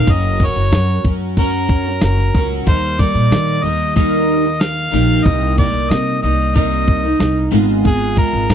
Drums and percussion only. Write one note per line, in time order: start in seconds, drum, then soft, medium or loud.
0.07 kick loud
0.07 shaker medium
0.23 shaker soft
0.40 kick loud
0.40 shaker medium
0.56 shaker medium
0.72 snare loud
0.72 shaker medium
0.89 shaker medium
1.05 kick loud
1.20 shaker soft
1.37 kick loud
1.37 shaker medium
1.53 shaker medium
1.68 kick loud
1.68 shaker soft
1.85 shaker medium
2.01 snare loud
2.01 shaker medium
2.18 snare soft
2.18 shaker medium
2.34 kick loud
2.34 shaker medium
2.50 shaker soft
2.67 kick loud
2.67 shaker medium
2.83 shaker soft
2.99 kick loud
2.99 shaker medium
3.15 shaker medium
3.32 snare loud
3.32 shaker medium
3.47 shaker medium
3.64 shaker medium
3.80 shaker soft
3.96 kick loud
3.96 shaker medium
4.13 shaker medium
4.45 shaker medium
4.61 snare loud
4.61 shaker medium
4.78 shaker medium
4.94 shaker medium
5.09 shaker soft
5.25 kick loud
5.25 shaker medium
5.41 shaker soft
5.58 kick loud
5.58 shaker medium
5.74 shaker medium
5.91 snare loud
5.91 shaker medium
6.08 shaker medium
6.24 shaker medium
6.40 shaker soft
6.56 kick loud
6.56 shaker medium
6.73 shaker medium
6.88 kick loud
7.05 shaker medium
7.20 snare loud
7.20 shaker medium
7.37 shaker medium
7.53 shaker medium
7.69 shaker soft
7.85 kick loud
7.85 shaker medium
8.02 shaker soft
8.17 kick loud
8.17 shaker medium
8.33 shaker medium
8.50 snare loud
8.50 shaker medium